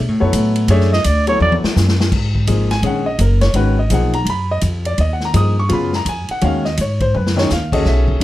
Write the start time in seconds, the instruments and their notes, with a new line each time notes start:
0.08 upright bass A2
0.20 upright bass F#2, grand piano F#3 B3 E4 A4 C#5
0.33 upright bass A2, hi-hat pedal, ride
0.56 ride
0.68 upright bass F#2, grand piano A3 D4 G#4 C#5 E5, ride
0.81 snare
0.93 trumpet D#5, snare
1.04 upright bass D2, trumpet D5, hi-hat pedal, ride
1.27 grand piano F#3 B3 E4 A4 C#5, trumpet C#5, ride
1.40 upright bass E2, trumpet D5, high tom
1.52 high tom
1.64 muted upright bass stroke, snare
1.76 upright bass F#2, snare, hi-hat pedal
1.88 snare
2.00 snare
2.12 upright bass G#2, kick, crash
2.35 kick
2.47 upright bass G#1, grand piano F3 A#3 D#4 G#4, hi-hat pedal, ride
2.71 grand piano G#5, snare, ride
2.82 upright bass A#1, grand piano D#3 G#3 C#4 G#4 F#5, ride
3.06 grand piano D#5
3.19 upright bass F#1, grand piano A#4, hi-hat pedal, ride
3.41 grand piano C#5, snare, ride
3.54 upright bass G#1, grand piano D#3 G#3 C#4 F#4 B4, ride
3.79 grand piano D#5
3.90 upright bass B1, grand piano F3 A#3 D#4 G#4 F#5, hi-hat pedal, ride
4.13 grand piano A#5, ride
4.25 upright bass F#2, ride
4.30 grand piano B5
4.51 grand piano D#5
4.61 upright bass F2, hi-hat pedal, ride
4.85 grand piano D5, ride
4.98 upright bass D#2, grand piano D#5, ride
5.13 grand piano F#5
5.20 snare
5.25 grand piano A#5
5.34 upright bass G2, grand piano F3 A#3 D#4 G#4 D#6, hi-hat pedal, ride
5.60 grand piano C#6
5.69 upright bass F#2, grand piano C#3 F#3 B3 F4, ride
5.73 grand piano B5
5.93 grand piano A#5, snare
6.05 upright bass F2, grand piano G#5, hi-hat pedal, ride
6.28 grand piano F#5, muted upright bass stroke, ride
6.41 upright bass D#2, grand piano D#3 G#3 C#4 F#4 F5, ride
6.65 grand piano D#5, snare
6.77 upright bass G#2, grand piano C#5, hi-hat pedal, ride
7.00 grand piano C5, kick, ride
7.14 upright bass F#2, grand piano B4, mid tom
7.27 snare
7.36 grand piano D#3 G#3 C#4 D#4 C#5, snare
7.50 upright bass D#2, grand piano F5, snare, hi-hat pedal
7.72 grand piano C#4 F#4 G#4 A4 D#5, kick, crash
7.85 upright bass B1, grand piano E5, snare
8.08 kick
8.20 upright bass A1